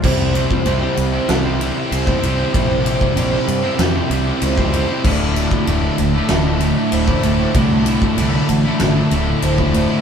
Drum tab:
CC |x---------------|----------------|x---------------|----------------|
RD |--x-x-x-x-x-x-x-|x-x-x-x-x-x-x-x-|--x-x-x-x-x-x-x-|x-x-x-x-x-x-x-x-|
SD |--------o----o--|--------o-------|--------o-------|--------o-------|
BD |o--o---------o--|o--o---------o--|o--o---------o--|o--o---------o--|